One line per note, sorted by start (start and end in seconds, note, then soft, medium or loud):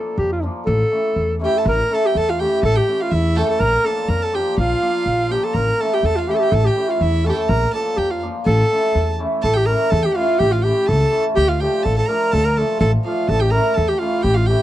0.00 0.41 F3 medium
0.00 0.13 A#3 medium
0.00 0.13 D4 soft
0.00 0.13 F4 medium
0.00 0.18 A4 medium
0.18 0.47 F2 medium
0.18 0.30 G4 medium
0.32 0.42 F4 medium
0.42 0.72 F3 medium
0.42 0.62 A#3 medium
0.42 0.62 D4 medium
0.42 0.62 F4 medium
0.66 0.82 A1 medium
0.66 1.36 A4 loud
0.91 1.38 E3 medium
0.91 1.11 A3 medium
0.91 1.11 C#4 soft
0.91 1.12 E4 medium
1.16 1.46 E2 medium
1.39 1.70 E3 medium
1.39 1.60 A3 medium
1.39 1.60 C#4 medium
1.39 1.60 E4 medium
1.44 1.58 G4 medium
1.44 1.59 G5 medium
1.57 1.67 A4 medium
1.57 1.67 A5 medium
1.65 1.80 A1 loud
1.65 1.94 A#4 loud
1.65 1.96 A#5 medium
1.89 2.38 E3 medium
1.89 2.09 A3 medium
1.89 2.09 C#4 medium
1.89 2.10 E4 medium
1.89 2.07 A4 medium
1.94 2.08 A5 medium
2.05 2.18 G4 medium
2.05 2.19 G5 medium
2.15 2.44 E2 medium
2.15 2.31 A4 loud
2.15 2.30 A5 medium
2.29 2.42 F4 medium
2.29 2.41 F5 medium
2.39 2.86 E3 medium
2.39 2.58 A3 medium
2.39 2.59 C#4 medium
2.39 2.59 E4 medium
2.39 2.64 G4 medium
2.39 2.62 G5 medium
2.63 2.78 A1 medium
2.63 2.78 A4 loud
2.63 2.77 A5 medium
2.76 3.04 G4 medium
2.76 3.01 G5 medium
2.87 3.34 E3 medium
2.87 3.07 A3 medium
2.87 3.07 C#4 medium
2.87 3.07 E4 medium
3.00 3.16 F4 medium
3.00 3.12 F5 medium
3.11 3.41 E2 medium
3.11 3.40 E4 medium
3.11 3.37 E5 medium
3.35 3.65 E3 medium
3.35 3.55 A3 medium
3.35 3.56 C#4 medium
3.35 3.56 E4 medium
3.35 3.41 A4 medium
3.35 3.43 G5 medium
3.35 3.38 A5 medium
3.42 3.49 A4 medium
3.42 3.48 A5 medium
3.48 3.61 A4 medium
3.48 3.62 A5 medium
3.59 3.75 A#1 medium
3.59 3.86 A#4 loud
3.59 3.88 A#5 medium
3.83 4.31 F3 medium
3.83 4.04 A#3 medium
3.83 4.04 D4 medium
3.83 4.04 F4 medium
3.83 4.11 A4 medium
3.83 4.10 A5 medium
4.08 4.38 F2 medium
4.08 4.26 A#4 medium
4.08 4.24 A#5 medium
4.22 4.36 A4 medium
4.22 4.36 A5 medium
4.32 4.80 F3 medium
4.32 4.52 A#3 medium
4.32 4.53 D4 medium
4.32 4.53 F4 medium
4.32 4.58 G4 medium
4.32 4.58 G5 medium
4.58 4.72 A#1 medium
4.58 5.33 F4 medium
4.58 5.33 F5 medium
4.81 5.28 F3 medium
4.81 5.01 A#3 medium
4.81 5.02 D4 medium
4.81 5.02 F4 medium
5.06 5.35 A#1 medium
5.29 5.60 F3 medium
5.29 5.50 A#3 medium
5.29 5.50 D4 medium
5.29 5.50 F4 medium
5.29 5.46 G4 medium
5.29 5.45 G5 medium
5.43 5.58 A4 medium
5.43 5.55 A5 medium
5.54 5.69 A1 medium
5.54 5.82 A#4 loud
5.54 5.82 A#5 medium
5.78 6.26 E3 medium
5.78 5.99 A3 medium
5.78 5.99 C#4 medium
5.78 6.00 E4 medium
5.78 5.95 A4 medium
5.78 5.95 A5 medium
5.94 6.06 G4 medium
5.94 6.07 G5 medium
6.03 6.33 E2 medium
6.03 6.17 A4 medium
6.03 6.20 A5 medium
6.16 6.30 F4 medium
6.16 6.32 F5 medium
6.27 6.74 E3 medium
6.27 6.48 A3 medium
6.27 6.48 C#4 medium
6.27 6.48 E4 medium
6.27 6.36 G4 medium
6.27 6.38 G5 medium
6.34 6.40 A4 medium
6.34 6.44 A5 medium
6.39 6.53 G4 medium
6.43 6.56 G5 medium
6.51 6.67 A1 loud
6.51 6.66 A4 loud
6.51 6.68 A5 medium
6.65 6.90 G4 medium
6.65 6.92 G5 medium
6.76 7.23 E3 medium
6.76 6.96 A3 medium
6.76 6.96 C#4 medium
6.76 6.96 E4 medium
6.89 7.02 F4 medium
6.89 7.04 F5 medium
7.01 7.30 E2 medium
7.01 7.27 E4 medium
7.01 7.28 E5 medium
7.24 7.55 E3 medium
7.24 7.45 A3 medium
7.24 7.45 C#4 medium
7.24 7.45 E4 medium
7.24 7.30 A4 medium
7.24 7.31 A5 medium
7.29 7.33 G4 medium
7.29 7.37 A4 medium
7.29 7.34 G5 medium
7.29 7.38 A5 medium
7.37 7.51 A4 medium
7.37 7.50 A5 medium
7.49 7.64 A#1 medium
7.49 7.74 A#4 medium
7.49 7.72 A#5 medium
7.73 8.20 F3 medium
7.73 7.93 A#3 medium
7.73 7.93 D4 medium
7.73 7.94 F4 medium
7.73 7.98 A4 medium
7.73 7.99 A5 medium
7.97 8.27 F2 medium
7.97 8.12 G4 medium
7.97 8.12 G5 medium
8.10 8.22 F4 medium
8.10 8.22 F5 medium
8.22 8.52 F3 medium
8.22 8.42 A#3 medium
8.22 8.42 D4 medium
8.22 8.42 F4 medium
8.45 8.61 A1 medium
8.45 9.15 A4 loud
8.45 9.15 A5 medium
8.71 9.18 E3 medium
8.71 8.91 A3 soft
8.71 8.91 C#4 medium
8.71 8.91 E4 medium
8.95 9.24 E2 medium
9.19 9.49 E3 medium
9.19 9.39 A3 medium
9.19 9.39 C#4 medium
9.19 9.39 E4 medium
9.42 9.73 A1 medium
9.42 9.58 A4 loud
9.42 9.55 A5 medium
9.53 9.68 G4 medium
9.53 9.67 G5 medium
9.66 10.14 E3 medium
9.66 9.87 A3 medium
9.66 9.88 C#4 medium
9.66 9.88 E4 medium
9.66 9.92 A#4 medium
9.66 9.91 A#5 medium
9.90 10.06 E2 loud
9.90 10.07 A4 medium
9.90 10.04 A5 medium
10.03 10.18 G4 medium
10.03 10.16 G5 medium
10.15 10.62 E3 medium
10.15 10.35 A3 medium
10.15 10.36 C#4 medium
10.15 10.36 E4 medium
10.15 10.40 F4 medium
10.15 10.40 F5 medium
10.39 10.69 A1 medium
10.39 10.53 G4 loud
10.39 10.54 G5 medium
10.52 10.65 F4 medium
10.52 10.63 F5 medium
10.62 11.10 E3 medium
10.62 10.84 A3 medium
10.62 10.84 C#4 medium
10.62 10.90 G4 medium
10.62 10.88 G5 medium
10.66 10.84 E4 medium
10.86 11.03 C#2 medium
10.86 11.25 A4 loud
10.86 11.24 A5 medium
11.11 11.42 E3 medium
11.11 11.32 A3 medium
11.11 11.32 C#4 medium
11.11 11.32 E4 medium
11.36 11.66 D2 medium
11.36 11.50 G4 loud
11.36 11.50 G5 loud
11.48 11.62 F4 medium
11.48 11.61 F5 medium
11.60 12.06 F3 medium
11.60 11.80 A3 medium
11.60 11.80 D4 medium
11.60 11.80 F4 medium
11.60 11.86 G4 medium
11.60 11.84 G5 medium
11.83 12.00 A1 medium
11.83 11.97 A4 loud
11.83 11.96 A5 medium
11.97 12.10 A4 medium
11.97 12.07 A5 medium
12.06 12.55 F3 medium
12.06 12.28 A3 medium
12.06 12.28 D4 medium
12.06 12.35 A#4 medium
12.06 12.33 A#5 medium
12.10 12.29 F4 medium
12.32 12.62 D2 medium
12.32 12.47 A4 loud
12.32 12.45 A5 loud
12.44 12.59 A#4 medium
12.44 12.58 A#5 medium
12.56 13.03 F3 medium
12.56 12.76 A3 medium
12.56 12.77 D4 medium
12.56 12.77 F4 medium
12.56 12.80 A4 medium
12.56 12.79 A5 medium
12.80 12.95 A1 loud
12.80 12.91 A4 loud
12.80 12.91 A5 medium
13.04 13.34 F3 medium
13.04 13.24 A3 medium
13.04 13.24 D4 medium
13.04 13.31 F4 medium
13.04 13.25 F4 medium
13.04 13.29 F5 medium
13.27 13.57 A1 medium
13.27 13.43 A4 loud
13.27 13.41 A5 medium
13.40 13.53 G4 medium
13.40 13.52 G5 medium
13.50 14.00 E3 medium
13.50 13.72 A3 medium
13.50 13.72 C#4 medium
13.50 13.73 E4 medium
13.50 13.78 A#4 medium
13.50 13.75 A#5 medium
13.74 13.92 E2 medium
13.74 13.90 A4 medium
13.74 13.89 A5 medium
13.88 14.01 G4 medium
13.88 13.99 G5 soft
13.97 14.48 E3 medium
13.97 14.20 A3 medium
13.97 14.25 F4 medium
13.97 14.24 F5 medium
14.02 14.21 C#4 medium
14.02 14.21 E4 medium
14.22 14.53 A1 medium
14.22 14.38 G4 loud
14.22 14.36 G5 medium
14.34 14.49 F4 medium
14.34 14.47 F5 medium
14.46 14.62 E3 medium
14.46 14.62 G4 medium
14.46 14.62 G5 medium
14.50 14.62 A3 medium
14.50 14.62 C#4 medium
14.50 14.62 E4 medium